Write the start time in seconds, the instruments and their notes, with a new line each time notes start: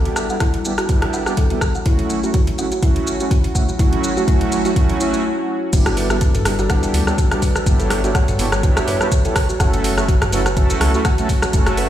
Already playing: analog polysynth G3 B3 D4 E4 G4, analog synth pad G3 D4 A4
0.05 kalimba F#4, closed hi-hat
0.16 cross-stick, shaker
0.30 analog polysynth G3 B3 D4 E4 G4, kalimba F#5, shaker
0.40 kalimba E4, kick, cross-stick, closed hi-hat, shaker
0.54 closed hi-hat, mid tom
0.65 analog polysynth G3 B3 D4 E4 G4, mid tom, shaker
0.78 kalimba F#4, cross-stick, closed hi-hat, shaker
0.89 analog polysynth G3 B3 D4 E4 G4, kalimba F#4, kick, closed hi-hat, mid tom, shaker
1.02 cross-stick, closed hi-hat
1.13 kalimba F#5, mid tom, shaker
1.26 analog polysynth G3 B3 D4 E4 G4, kalimba F#4, cross-stick, mid tom, shaker
1.37 kalimba A4, kick, closed hi-hat, shaker
1.50 analog polysynth G3 B3 D4 E4 G4, kalimba F#4, closed hi-hat
1.61 kick, cross-stick, mid tom, shaker
1.75 kalimba F#5, shaker
1.86 analog polysynth F#3 A3 C#4 E4 F#4, analog synth pad F#3 C#4 F#4, kalimba E4, kick, closed hi-hat, mid tom, shaker
1.99 closed hi-hat
2.10 mid tom, shaker
2.23 analog polysynth F#3 A3 C#4 E4 F#4, kalimba F#4, shaker
2.34 kalimba F#4, kick, closed hi-hat, mid tom, shaker
2.47 closed hi-hat, mid tom
2.58 analog polysynth F#3 A3 C#4 E4 F#4, kalimba F#5, mid tom, shaker
2.72 kalimba F#4, closed hi-hat, shaker
2.83 analog polysynth F#3 A3 C#4 E4 F#4, kalimba E4, kick, closed hi-hat, mid tom, shaker
2.96 closed hi-hat
3.07 mid tom, shaker
3.20 analog polysynth F#3 A3 C#4 E4 F#4, kalimba F#4, shaker
3.31 kalimba F#4, kick, closed hi-hat, mid tom, shaker
3.44 closed hi-hat
3.55 analog polysynth F#3 A3 C#4 E4 F#4, kalimba F#5, kick, mid tom, shaker
3.69 kalimba F#4, shaker
3.79 analog polysynth F#3 A3 C#4 E4 F#4, kalimba E4, kick, closed hi-hat, mid tom, shaker
3.93 closed hi-hat, mid tom
4.04 mid tom, shaker
4.17 analog polysynth F#3 A3 C#4 E4 F#4, kalimba F#4, mid tom, shaker
4.28 analog polysynth F#3 A3 C#4 E4 F#4, kalimba E4, kick, closed hi-hat, mid tom, shaker
4.41 closed hi-hat, mid tom
4.52 mid tom, shaker
4.65 analog polysynth F#3 A3 C#4 E4 F#4, kalimba F#4, closed hi-hat, mid tom, shaker
4.76 analog polysynth F#3 A3 C#4 E4 F#4, kalimba E4, kick, closed hi-hat, mid tom, shaker
4.89 closed hi-hat, mid tom
5.00 analog polysynth F#3 A3 C#4 E4 F#4, kalimba E4, mid tom, shaker
5.14 mid tom, shaker
5.73 fm bass G1, analog polysynth G3 B3 D4 E4 G4, analog synth pad G3 D4 A4, kalimba F#4, kick, closed hi-hat, crash, shaker
5.86 kalimba F#4, cross-stick, closed hi-hat, shaker
5.97 kalimba B4, open hi-hat, shaker
6.10 analog polysynth G3 B3 D4 E4 G4, kalimba F#4, cross-stick, shaker
6.21 kick, closed hi-hat, shaker
6.35 kalimba A4, closed hi-hat, mid tom, shaker
6.45 fm bass G1, analog polysynth G3 B3 D4 E4 G4, cross-stick, open hi-hat, shaker
6.59 kalimba F#4, closed hi-hat, shaker
6.70 analog polysynth G3 B3 D4 E4 G4, kalimba F#5, kick, cross-stick, closed hi-hat, mid tom, shaker
6.83 closed hi-hat, shaker
6.94 fm bass D2, open hi-hat, shaker
7.07 analog polysynth G3 B3 D4 E4 G4, kalimba C#5, cross-stick, shaker
7.18 kalimba F#4, kick, closed hi-hat, shaker
7.31 analog polysynth G3 B3 D4 E4 G4, kalimba F#4, cross-stick, closed hi-hat, shaker
7.42 kalimba B4, kick, open hi-hat, shaker
7.56 kalimba F#4, cross-stick, shaker
7.66 fm bass G1, analog polysynth G3 B3 D4 E4 G4, analog synth pad C#5, kick, closed hi-hat, shaker
7.80 kalimba A4, closed hi-hat, shaker
7.90 cross-stick, open hi-hat, shaker
8.04 analog polysynth G3 B3 D4 E4 G4, kalimba F#4, closed hi-hat, shaker
8.15 kalimba F#5, kick, cross-stick, closed hi-hat, shaker
8.28 closed hi-hat, mid tom, shaker
8.39 fm bass G1, analog polysynth G3 B3 D4 E4 G4, open hi-hat, shaker
8.52 kalimba C#5, cross-stick, closed hi-hat, shaker
8.63 analog polysynth G3 B3 D4 E4 G4, kalimba F#4, kick, closed hi-hat, shaker
8.77 kalimba F#4, cross-stick, closed hi-hat, shaker
8.88 kalimba B4, mid tom, open hi-hat, shaker
9.01 analog polysynth G3 B3 D4 E4 G4, kalimba F#4, cross-stick, shaker
9.12 kick, closed hi-hat, shaker
9.25 analog polysynth G3 B3 D4 E4 G4, kalimba A4, closed hi-hat, shaker
9.36 kick, cross-stick, open hi-hat, shaker
9.49 kalimba F#4, shaker
9.60 fm bass F#1, analog synth pad F#3 C#4 F#4, analog polysynth A3 C#4 E4 F#4 A4, kalimba F#5, kick, cross-stick, closed hi-hat, shaker
9.73 closed hi-hat, shaker
9.84 open hi-hat, shaker
9.98 analog polysynth A3 C#4 E4 F#4 A4, kalimba C#5, cross-stick, shaker
10.08 kalimba F#4, kick, closed hi-hat, shaker
10.22 kalimba F#4, cross-stick, closed hi-hat, mid tom, shaker
10.32 fm bass F#1, analog polysynth A3 C#4 E4 F#4 A4, kalimba B4, open hi-hat, shaker
10.46 kalimba F#4, cross-stick, closed hi-hat, shaker
10.57 analog polysynth A3 C#4 E4 F#4 A4, kick, closed hi-hat, mid tom, shaker
10.70 kalimba A4, closed hi-hat, shaker
10.81 fm bass C#2, cross-stick, open hi-hat, shaker
10.94 analog polysynth A3 C#4 E4 F#4 A4, kalimba F#4, shaker
11.05 kalimba F#5, kick, cross-stick, closed hi-hat, shaker
11.18 analog polysynth A3 C#4 E4 F#4 A4, closed hi-hat, shaker
11.29 kick, open hi-hat, shaker
11.42 kalimba C#5, cross-stick, shaker
11.53 fm bass F#1, analog polysynth A3 C#4 E4 F#4 A4, kalimba F#4, kick, closed hi-hat, shaker
11.66 kalimba F#4, cross-stick, closed hi-hat, shaker
11.77 kalimba B4, open hi-hat, shaker